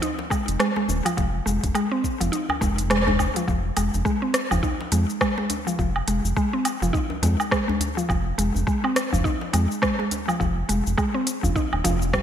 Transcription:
0.02 synth pluck D#4, closed hi-hat, cabasa
0.19 djembe slap
0.30 synth pluck G#3, kick, cabasa, low woodblock
0.48 analog synth bass F1, closed hi-hat, cabasa
0.59 synth pluck G#3, cross-stick, closed hi-hat, cabasa
0.76 synth pluck G#3, djembe slap
0.88 analog synth bass D#1, djembe tone, cabasa
1.05 synth pluck F3, closed hi-hat, djembe slap, cabasa, low woodblock
1.17 analog synth bass F1, synth pluck F3, kick, closed hi-hat, cabasa
1.46 analog synth bass F1, synth pluck G#3, cabasa
1.63 analog synth bass F1, kick, closed hi-hat, djembe tone, cabasa
1.75 synth pluck G#3, closed hi-hat, cabasa, low woodblock
1.91 synth pluck C4
2.04 kick, cabasa
2.20 analog synth bass F1, synth pluck F3, closed hi-hat, djembe slap, cabasa
2.32 synth pluck D#4, closed hi-hat, cabasa
2.49 djembe tone, low woodblock
2.61 analog synth bass F1, synth pluck G#3, kick, djembe slap, djembe tone, cabasa
2.78 closed hi-hat, cabasa
2.90 synth pluck G#3, cross-stick, closed hi-hat, cabasa
3.07 synth pluck G#3, djembe slap, djembe bass
3.19 kick, djembe bass, cabasa, low woodblock
3.36 synth pluck F3, closed hi-hat, djembe slap, cabasa
3.48 analog synth bass F1, synth pluck F3, kick, cabasa
3.77 analog synth bass F1, synth pluck G#3, closed hi-hat, cabasa, low woodblock
3.94 analog synth bass F1, djembe tone, cabasa
4.05 synth pluck G#3, kick, cabasa
4.22 synth pluck C4
4.34 cross-stick, closed hi-hat, cabasa
4.51 analog synth bass F1, synth pluck F3, djembe slap, djembe bass, cabasa, low woodblock
4.63 synth pluck D#4, kick, cabasa
4.81 djembe slap
4.92 analog synth bass F2, synth pluck G#3, closed hi-hat, cabasa
5.10 cabasa
5.21 synth pluck G#3, kick, cross-stick, cabasa, low woodblock
5.38 synth pluck G#3, djembe slap
5.50 closed hi-hat, djembe tone, cabasa
5.67 synth pluck F3, djembe slap, cabasa
5.79 analog synth bass F1, synth pluck F3, kick, cabasa
5.96 low woodblock
6.08 analog synth bass F1, synth pluck G#3, closed hi-hat, cabasa
6.24 analog synth bass F1, cabasa
6.36 synth pluck G#3, kick, cabasa
6.53 synth pluck C4
6.65 closed hi-hat, cabasa, low woodblock
6.82 analog synth bass F1, synth pluck F3, djembe slap, cabasa
6.93 synth pluck D#4, kick, cabasa
7.10 djembe tone
7.22 analog synth bass F2, synth pluck G#3, closed hi-hat, djembe slap, djembe tone, cabasa
7.40 cabasa, low woodblock
7.51 synth pluck G#3, kick, cross-stick, cabasa
7.68 synth pluck G#3, djembe slap, djembe bass
7.80 closed hi-hat, djembe bass, cabasa
7.97 synth pluck F3, cabasa
8.09 analog synth bass F1, synth pluck F3, kick, cabasa, low woodblock
8.38 analog synth bass F1, synth pluck G#3, closed hi-hat, cabasa
8.55 analog synth bass F1, djembe tone, cabasa
8.67 synth pluck G#3, kick, cabasa
8.84 synth pluck C4, low woodblock
8.96 cross-stick, closed hi-hat, cabasa
9.13 analog synth bass F1, synth pluck F3, djembe slap, djembe bass, cabasa
9.24 synth pluck D#4, kick, cabasa
9.41 djembe slap
9.53 analog synth bass F2, synth pluck G#3, closed hi-hat, cabasa, low woodblock
9.71 cabasa
9.82 synth pluck G#3, kick, cross-stick, cabasa
9.99 synth pluck G#3, djembe slap
10.11 closed hi-hat, djembe tone, cabasa
10.28 synth pluck F3, djembe slap, cabasa, low woodblock
10.40 analog synth bass F1, synth pluck F3, kick, cabasa
10.69 analog synth bass F1, synth pluck G#3, closed hi-hat, cabasa
10.87 analog synth bass F1, cabasa
10.98 synth pluck G#3, kick, cabasa, low woodblock
11.14 synth pluck C4
11.27 closed hi-hat, cabasa
11.43 analog synth bass F1, synth pluck F3, djembe slap, djembe bass, cabasa
11.56 synth pluck D#4, kick, cabasa
11.73 analog synth bass D#1, djembe tone, low woodblock
11.84 analog synth bass F1, synth pluck F3, closed hi-hat, djembe slap, djembe tone, cabasa
12.02 cabasa
12.13 synth pluck G3, kick, cross-stick, cabasa

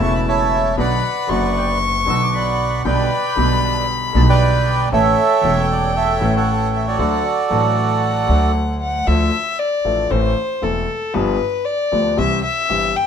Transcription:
Already playing: grand piano C#3, bandoneon E4, violin A5
0.00 upright bass E1, grand piano E1 E2 A3 B3 E4, bandoneon C#6
0.15 bandoneon B5
0.28 bandoneon C#5 E5 A5
0.77 grand piano B1 B2 D3 F#3 B3 F#4, upright bass B1, bandoneon B4 D5 F#5, violin B5
1.27 grand piano F#1 F#2 D3 F#3 B3, upright bass F#1, violin C#6
1.31 grand piano F#4
1.58 bandoneon G5
2.05 grand piano B1 B2 D3 F#3 B3 F#4, upright bass B1
2.10 bandoneon E6
2.21 bandoneon D6
2.34 bandoneon D5 F#5 B5
2.85 grand piano B1 B2 D3 G3 B3 G4, upright bass B1, bandoneon B4 D5 G5, violin B5
3.35 upright bass B1, grand piano B1 B2 D3 G3 B3 G4
3.64 bandoneon A5
4.13 grand piano B1 B2 D3 G3 B3, upright bass B1, bandoneon A5
4.17 grand piano G4
4.29 bandoneon B4 D5 G5
4.92 grand piano A1 A2 E3 A3 C#4 A4, upright bass A1, bandoneon A4 C#5 E5, violin G5
5.41 grand piano E1 E2 E3 A3 C#4, upright bass E1
5.46 grand piano A4
5.72 bandoneon D5
5.96 bandoneon A4 C#5 E5
6.20 grand piano A1 A2 E3 A3 C#4, upright bass A1
6.24 grand piano A4
6.36 bandoneon A4 C#5 F#5
6.76 bandoneon E5
6.87 bandoneon F#4 A4 D5
6.98 grand piano D2 D3 F#3 A3 D4 A4, upright bass D2, violin F#5
7.49 upright bass A1, grand piano A1 A2 F#3 A3 D4 A4, violin F#5
8.27 grand piano D2 D3 F#3 A3 D4 A4, upright bass D2
8.81 violin F#5
9.07 grand piano D2 D3 F3 A3 D4 A4, upright bass D2, violin E5
9.59 violin D5
9.85 upright bass A1, grand piano A1 A2 F3 A3 D4 A4
10.10 grand piano A1 A2 E3 A3 C4 A4, upright bass A1, violin C5
10.62 grand piano E1 E2 E3 A3 C4 A4, upright bass E1, violin A4
11.13 grand piano G1 G2 F3 B3 D4 G4, upright bass G1, violin B4
11.65 violin D5
11.91 grand piano D2 D3 F3 B3 D4 G4, upright bass D2
12.17 grand piano C2 C3 E3 G3 C4 G4, upright bass C2, violin E5
12.44 violin E5
12.69 grand piano G1 G2 E3 G3 C4 G4, upright bass G1
12.96 violin G5

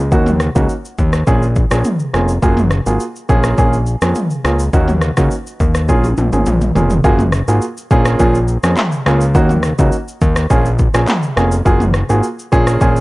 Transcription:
Already playing: analog synth bass C#2
0.12 analog synth bass D#2, grand piano A#3 C#4 D#4 F#4, kick, shaker
0.26 mid tom, shaker
0.40 cross-stick, shaker
0.55 analog synth bass C#2, grand piano A#3 C#4 D#4 F#4, kick, shaker
0.69 shaker
0.85 shaker
0.98 analog synth bass D#2, kick, shaker
1.13 cross-stick, shaker
1.27 analog synth bass A#1, grand piano A#3 C#4 F4 G#4, kick, shaker
1.42 shaker
1.56 kick, shaker
1.71 analog synth bass A#1, grand piano A#3 C#4 F4 G#4, cross-stick, shaker
1.84 mid tom, shaker
1.99 shaker
2.13 analog synth bass F1, grand piano A#3 C#4 F4 G#4, cross-stick, shaker
2.28 shaker
2.42 analog synth bass F#1, grand piano A#3 F4 F#4 G#4, kick, shaker
2.57 mid tom, shaker
2.71 cross-stick, shaker
2.86 analog synth bass G#1, grand piano A#3 F4 F#4 G#4, shaker
3.00 shaker
3.16 shaker
3.29 analog synth bass A#1, grand piano A#3 C#4 F4 G#4, kick, shaker
3.44 cross-stick, shaker
3.58 analog synth bass A#1, grand piano A#3 C#4 F4 G#4, kick, shaker
3.73 shaker
3.86 shaker
4.02 analog synth bass F2, grand piano A#3 C#4 F4 G#4, cross-stick, shaker
4.15 mid tom, shaker
4.30 shaker
4.44 analog synth bass C#2, grand piano A#3 C#4 F4 G#4, cross-stick, shaker
4.59 shaker
4.73 analog synth bass D#2, grand piano A#3 C#4 D#4 F#4, kick, shaker
4.88 mid tom, shaker
5.01 cross-stick, shaker
5.17 analog synth bass C#2, grand piano A#3 C#4 D#4 F#4, kick, cross-stick, shaker
5.31 shaker
5.47 shaker
5.60 analog synth bass D#2, kick, shaker
5.75 cross-stick, shaker
5.88 analog synth bass A#1, grand piano A#3 C#4 F4 G#4, kick, high tom, shaker
6.04 high tom, shaker
6.17 analog synth bass A#1, mid tom, shaker
6.32 analog synth bass G#1, grand piano A#3 C#4 F4 G#4, mid tom, shaker
6.46 analog synth bass A#1, mid tom, shaker
6.61 mid tom, shaker
6.75 analog synth bass F1, grand piano A#3 C#4 F4 G#4, floor tom, shaker
6.90 floor tom, shaker
7.04 analog synth bass F#1, grand piano A#3 F4 F#4 G#4, kick, shaker
7.19 mid tom, shaker
7.32 cross-stick, shaker
7.48 analog synth bass G#1, grand piano A#3 F4 F#4 G#4, shaker
7.62 shaker
7.77 shaker
7.91 analog synth bass A#1, grand piano A#3 C#4 F4 G#4, kick, shaker
8.05 cross-stick, shaker
8.19 analog synth bass A#1, grand piano A#3 C#4 F4 G#4, kick, shaker
8.35 shaker
8.48 shaker
8.63 analog synth bass F2, grand piano A#3 C#4 F4 G#4, cross-stick, shaker
8.77 clap, mid tom, shaker
8.92 shaker
9.06 analog synth bass C#2, grand piano A#3 C#4 F4 G#4, cross-stick, shaker
9.21 shaker
9.35 analog synth bass D#2, grand piano A#3 C#4 D#4 F#4, kick, shaker
9.49 mid tom, shaker
9.63 cross-stick, shaker
9.78 analog synth bass C#2, grand piano A#3 C#4 D#4 F#4, kick, shaker
9.92 shaker
10.08 shaker
10.21 analog synth bass D#2, kick, shaker
10.36 cross-stick, shaker
10.50 analog synth bass A#1, grand piano A#3 C#4 F4 G#4, kick, shaker
10.65 shaker
10.79 kick, shaker
10.94 analog synth bass A#1, grand piano A#3 C#4 F4 G#4, cross-stick, shaker
11.08 clap, mid tom, shaker
11.23 shaker
11.36 analog synth bass F1, grand piano A#3 C#4 F4 G#4, cross-stick, shaker
11.52 shaker
11.65 analog synth bass F#1, grand piano A#3 F4 F#4 G#4, kick, shaker
11.80 mid tom, shaker
11.94 cross-stick, shaker
12.09 analog synth bass G#1, grand piano A#3 F4 F#4 G#4, shaker
12.23 shaker
12.39 shaker
12.52 analog synth bass A#1, grand piano A#3 C#4 F4 G#4, kick, shaker
12.67 cross-stick, shaker
12.81 analog synth bass A#1, grand piano A#3 C#4 F4 G#4, kick, shaker
12.96 shaker

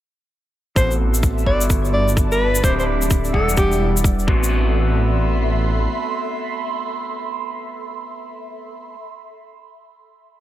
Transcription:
0.76 detuned saw bass A1, clean electric guitar B3 C4 F#4 A4, ambient pad D4 D5, analog synth pad A4, alto saxophone C5, kick, shaker
0.90 analog synth pad E5, shaker
1.10 analog synth pad C6, shaker
1.23 kick, shaker
1.38 shaker
1.46 detuned saw bass G1, analog synth pad G3, clean electric guitar B3 E4 F#4 A4, alto saxophone D5, kick
1.61 analog synth pad D5, shaker
1.66 analog synth pad A5, kick, shaker
1.85 shaker
1.93 alto saxophone D5
2.01 analog synth pad B5
2.08 shaker
2.17 kick, shaker
2.32 alto saxophone B4, shaker
2.55 shaker
2.63 detuned saw bass D1, clean electric guitar C4 D4 E4 G4, analog synth pad D4, alto saxophone C5, kick, shaker
2.79 alto saxophone C5, shaker
2.85 analog synth pad A4
2.98 analog synth pad E5, shaker
3.10 kick, shaker
3.24 shaker
3.33 detuned saw bass E1, clean electric guitar G3 D4 E4 F#5, analog synth pad E4, alto saxophone A4, kick
3.49 shaker
3.53 analog synth pad B4, shaker
3.57 alto saxophone G4, kick
3.72 shaker
3.97 shaker
4.04 kick, shaker
4.19 shaker
4.27 detuned saw bass A1, clean electric guitar A3 B3 C4 F#4, analog synth pad A4, kick
4.37 analog synth pad E5
4.43 shaker
4.68 analog synth pad B5
4.73 analog synth pad C6

